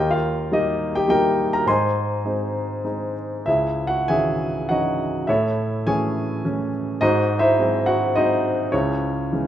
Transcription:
0.00 1.64 D#2 medium
0.00 0.10 G4 medium
0.00 0.10 D#5 medium
0.00 0.11 G5 medium
0.10 0.50 F4 medium
0.10 0.50 A#4 medium
0.10 0.50 F5 medium
0.52 1.06 G3 soft
0.52 1.07 A#3 soft
0.52 1.07 D#4 medium
0.52 0.93 G4 medium
0.52 0.97 D#5 medium
0.95 1.09 G4 medium
0.95 1.08 G5 medium
1.08 1.65 G3 soft
1.08 1.65 A#3 soft
1.08 1.66 D#4 medium
1.08 1.51 G4 medium
1.08 1.51 A#4 medium
1.08 1.55 G5 medium
1.53 1.68 A#4 medium
1.53 1.68 A#5 medium
1.66 3.42 G#2 medium
1.66 3.13 C5 medium
1.66 3.13 D#5 medium
1.66 3.13 G#5 medium
1.66 3.12 C6 medium
2.24 2.83 G#3 soft
2.24 2.83 C4 soft
2.24 2.83 D#4 soft
2.84 3.44 G#3 soft
2.84 3.45 C4 soft
2.84 3.45 D#4 soft
3.46 5.25 C#2 medium
3.46 3.86 E4 medium
3.46 3.86 G#4 soft
3.46 3.89 E5 medium
3.87 4.09 F#4 medium
3.87 4.10 F#5 medium
4.08 4.69 D#3 soft
4.08 4.68 E3 soft
4.08 4.69 C#4 soft
4.08 4.67 G#4 medium
4.08 4.67 E5 medium
4.08 4.66 G#5 medium
4.69 5.27 E3 soft
4.69 5.27 C#4 soft
4.69 5.27 D#4 soft
4.69 5.25 F#4 medium
4.69 5.25 D#5 medium
4.69 5.30 F#5 medium
5.27 6.97 A2 medium
5.27 5.83 E4 medium
5.27 5.83 A4 medium
5.27 5.83 C#5 medium
5.27 5.88 E5 medium
5.86 6.43 E3 soft
5.86 6.43 A3 soft
5.86 6.43 C#4 medium
5.86 6.70 G#4 medium
5.86 6.70 C#5 medium
5.86 6.69 G#5 medium
6.45 7.00 E3 soft
6.45 7.00 A3 soft
6.45 7.00 C#4 medium
7.01 8.69 G#2 medium
7.01 7.37 D#4 medium
7.01 7.37 F#4 medium
7.01 7.37 C5 medium
7.01 7.40 D#5 medium
7.39 7.85 E4 medium
7.39 7.85 C5 medium
7.39 7.89 E5 medium
7.59 8.14 F#3 soft
7.59 8.14 G#3 soft
7.59 8.14 C4 medium
7.86 8.14 F#4 medium
7.86 8.16 F#5 medium
8.15 8.71 F#3 soft
8.15 8.72 G#3 soft
8.15 8.72 C4 medium
8.15 8.70 D#4 medium
8.15 8.70 C5 medium
8.15 8.75 D#5 medium
8.72 9.47 C#2 medium
8.72 9.32 C#4 medium
8.72 9.47 E4 soft
8.72 9.47 G#4 soft
8.72 9.47 C#5 medium
9.32 9.47 E3 soft
9.32 9.47 G#3 soft
9.32 9.47 C#4 soft

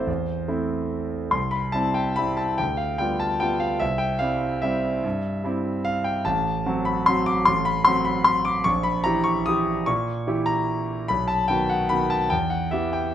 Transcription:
0.00 0.10 C4 soft
0.00 0.10 E4 soft
0.00 1.32 C5 medium
0.00 0.10 D5 medium
0.00 0.10 E5 medium
0.07 0.47 E2 soft
0.48 1.28 A3 soft
0.48 1.28 C4 soft
0.48 1.29 E4 soft
1.31 1.73 C2 medium
1.31 1.52 C6 medium
1.51 1.73 B5 medium
1.72 2.14 G3 soft
1.72 2.14 C4 soft
1.72 2.14 E4 soft
1.72 1.95 A5 medium
1.94 2.17 G5 medium
2.16 2.55 G3 soft
2.16 2.55 C4 soft
2.16 2.56 E4 soft
2.16 2.38 B5 medium
2.37 2.58 A5 medium
2.58 2.99 D2 medium
2.58 2.79 G5 medium
2.77 2.99 F5 medium
2.98 3.37 G3 soft
2.98 3.38 B3 soft
2.98 3.38 F4 soft
2.98 3.20 G5 medium
3.20 3.41 A5 medium
3.40 3.77 G3 soft
3.40 3.77 B3 soft
3.40 3.78 F4 soft
3.40 3.61 G5 medium
3.60 3.80 F5 medium
3.80 4.20 C2 medium
3.80 4.00 E5 medium
3.98 4.20 G5 medium
4.19 4.59 G3 soft
4.19 4.59 C4 soft
4.19 4.60 E4 medium
4.19 4.62 F5 medium
4.62 5.00 G3 soft
4.62 5.00 C4 soft
4.62 5.00 E4 soft
4.62 5.85 E5 medium
5.04 5.43 G2 medium
5.44 6.22 G3 soft
5.44 6.22 C4 soft
5.44 6.23 E4 medium
5.85 6.06 F5 medium
6.04 6.25 G5 medium
6.25 6.65 A1 medium
6.25 6.86 A5 medium
6.66 7.04 F#3 medium
6.66 7.03 C4 medium
6.66 7.04 F#4 medium
6.85 7.07 B5 medium
7.06 7.43 F#3 soft
7.06 7.43 C4 soft
7.06 7.44 F#4 medium
7.06 7.27 C6 medium
7.26 7.46 D6 medium
7.45 7.85 A1 medium
7.45 7.66 C6 medium
7.65 7.86 B5 medium
7.85 8.63 F#3 medium
7.85 8.63 C4 medium
7.85 8.63 F#4 medium
7.85 8.06 C6 medium
8.05 8.26 B5 medium
8.24 8.46 C6 medium
8.45 8.66 D6 medium
8.64 9.05 A#1 medium
8.64 8.85 C#6 medium
8.83 9.05 B5 medium
9.04 9.43 E3 soft
9.04 9.43 E4 soft
9.04 9.43 G4 medium
9.04 9.25 A#5 medium
9.24 9.46 C#6 medium
9.46 9.84 E3 soft
9.46 9.84 E4 medium
9.46 9.84 G4 medium
9.46 9.86 D#6 medium
9.86 10.26 A#2 medium
9.86 10.47 C#6 medium
10.27 11.05 E3 soft
10.27 11.05 E4 soft
10.27 11.05 G4 medium
10.46 10.68 A#5 medium
11.08 11.48 B1 medium
11.08 11.28 B5 medium
11.28 11.48 A5 medium
11.48 11.86 D#3 soft
11.48 11.87 B3 soft
11.48 11.87 F#4 soft
11.48 11.69 G5 medium
11.70 11.90 F#5 medium
11.89 12.27 D#3 soft
11.89 12.27 B3 soft
11.89 12.27 F#4 soft
11.89 12.10 B5 medium
12.10 12.30 A5 medium
12.30 12.71 E2 medium
12.30 12.51 G5 medium
12.50 12.72 F#5 medium
12.71 13.12 E3 soft
12.71 13.13 B3 soft
12.71 13.13 G4 soft
12.71 12.93 E5 medium
12.93 13.14 G5 medium

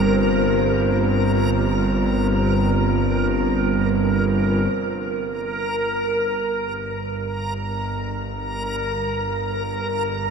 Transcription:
0.00 4.72 G1 medium
0.00 4.72 G2 medium
0.00 4.73 G3 medium
0.00 4.74 C4 medium
0.00 4.74 F4 medium
0.00 4.68 A#4 medium
0.00 4.74 C5 medium
4.69 10.30 G2 medium
4.69 10.30 A#4 medium
4.73 10.30 G1 medium

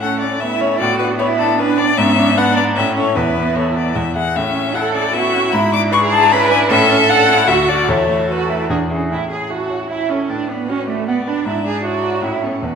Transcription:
0.00 0.78 A2 medium
0.00 0.41 A3 medium
0.00 0.14 C#4 medium
0.00 0.39 C#4 medium
0.00 0.34 A4 medium
0.00 0.19 F#5 loud
0.20 0.54 C#4 medium
0.20 0.41 D5 medium
0.40 0.83 A3 medium
0.40 0.62 B3 medium
0.40 0.82 E4 medium
0.40 0.62 E5 loud
0.60 0.81 C#4 medium
0.60 0.78 C#5 loud
0.79 1.95 A2 medium
0.79 1.98 B3 medium
0.79 1.19 F#4 medium
0.79 0.98 D5 loud
0.98 1.32 D4 medium
0.98 1.06 B4 loud
1.19 1.58 E4 loud
1.19 1.51 B4 medium
1.19 1.27 C#5 loud
1.38 1.71 D4 medium
1.38 1.60 A4 loud
1.59 1.79 C#4 medium
1.59 1.97 D4 loud
1.59 1.79 B4 loud
1.78 1.98 D4 medium
1.78 1.99 D5 loud
1.98 2.74 G#2 medium
1.98 2.38 B3 medium
1.98 2.39 C#4 loud
1.98 2.39 E5 loud
2.18 2.49 D4 medium
2.37 2.75 B3 loud
2.37 2.78 D4 medium
2.37 2.68 B4 medium
2.37 2.55 F#5 loud
2.56 2.76 D4 medium
2.56 2.64 D5 loud
2.76 3.15 A2 medium
2.76 3.18 C#4 loud
2.76 3.16 C#4 medium
2.76 2.95 E5 loud
2.97 3.14 E4 medium
2.97 3.14 A4 medium
2.97 3.17 C#5 loud
3.15 3.94 E2 medium
3.15 3.94 B3 medium
3.15 4.16 E4 medium
3.15 3.57 B4 loud
3.36 3.68 B3 medium
3.55 3.88 A4 medium
3.55 3.75 C#5 medium
3.76 3.96 B3 medium
3.76 3.97 D5 medium
3.95 4.34 E2 medium
3.95 4.03 G#3 medium
3.95 4.15 E5 medium
4.16 4.34 E4 medium
4.16 4.34 G#4 medium
4.16 4.38 F#5 loud
4.35 5.50 A2 medium
4.35 4.77 C#4 medium
4.35 4.76 E5 loud
4.56 4.87 C#4 medium
4.74 5.92 E4 medium
4.74 5.06 A4 medium
4.74 5.14 A4 medium
4.74 4.93 F#5 loud
4.94 5.26 C#4 medium
4.94 5.15 D5 loud
5.14 5.34 B3 medium
5.14 5.56 F#4 loud
5.14 5.54 E5 loud
5.34 5.53 C#4 medium
5.52 6.67 G#2 medium
5.52 5.94 E4 medium
5.52 5.72 B5 loud
5.73 6.04 D4 medium
5.73 5.81 D6 loud
5.92 6.72 E4 medium
5.92 6.34 G#4 loud
5.92 6.23 B4 medium
5.92 6.00 C#6 loud
6.12 6.43 D4 medium
6.12 6.33 A5 loud
6.31 6.51 C#4 medium
6.31 6.71 B4 loud
6.31 6.50 B5 loud
6.51 6.70 D4 medium
6.51 6.59 G#5 loud
6.70 7.46 A2 loud
6.70 6.89 C#4 loud
6.70 7.47 A4 loud
6.70 7.11 E5 loud
6.90 7.21 C#4 medium
6.90 6.98 C#4 loud
7.09 7.30 D4 loud
7.09 7.40 A4 medium
7.09 7.49 F#5 loud
7.28 7.48 C#4 medium
7.28 7.49 E4 loud
7.47 7.87 D2 medium
7.47 7.89 F#4 medium
7.47 7.90 F#4 loud
7.47 7.70 E5 loud
7.68 7.86 F#4 medium
7.68 7.86 A4 medium
7.68 7.90 D5 loud
7.88 8.68 E2 medium
7.88 8.25 E4 medium
7.88 8.69 A4 medium
7.88 8.32 C#5 loud
8.09 8.42 A3 medium
8.28 8.51 F#4 loud
8.28 8.61 A4 medium
8.28 8.71 B4 medium
8.50 8.70 A3 medium
8.50 8.69 E4 medium
8.70 9.10 E2 medium
8.70 8.78 D4 medium
8.70 8.78 G#4 medium
8.90 9.10 C#4 medium
8.90 9.09 E4 medium
8.90 9.09 G#4 medium
9.10 10.26 A2 soft
9.10 9.29 E4 medium
9.10 9.30 E4 medium
9.30 9.62 C#4 soft
9.30 9.51 G#4 medium
9.30 9.52 G#4 medium
9.50 9.82 E4 soft
9.50 9.90 F#4 medium
9.50 9.89 F#4 medium
9.50 9.88 A4 soft
9.70 10.02 C#5 soft
9.90 10.11 E4 medium
9.90 10.12 E4 medium
9.90 10.31 C#5 medium
9.90 10.22 E5 soft
10.09 10.31 C#4 medium
10.09 10.32 C#4 medium
10.09 10.30 A4 soft
10.29 11.42 A2 medium
10.29 10.49 D4 medium
10.29 10.51 D4 medium
10.29 11.07 B4 medium
10.49 10.57 B3 medium
10.49 10.70 B3 medium
10.49 10.80 D4 soft
10.69 10.88 C#4 medium
10.69 11.00 F#4 soft
10.87 11.10 A3 medium
10.87 11.07 A3 medium
10.87 11.19 D5 soft
11.08 11.16 B3 medium
11.08 11.29 B3 medium
11.08 11.47 D5 medium
11.08 11.38 F#5 medium
11.27 11.46 D4 medium
11.27 11.46 B4 soft
11.45 12.21 G#2 medium
11.45 12.25 D4 medium
11.45 11.55 E4 medium
11.45 11.83 E5 medium
11.64 11.95 D4 soft
11.64 11.84 G#4 medium
11.84 12.15 E4 soft
11.84 12.25 F#4 medium
11.84 12.63 C#5 medium
12.03 12.23 D5 soft
12.22 12.61 A2 medium
12.22 12.43 C#4 medium
12.22 12.44 E4 medium
12.42 12.51 B3 soft
12.42 12.66 C#4 medium
12.42 12.60 E4 soft
12.42 12.60 A4 soft
12.61 12.75 E2 medium
12.61 12.75 A3 soft
12.61 12.75 B3 medium
12.61 12.75 B4 medium

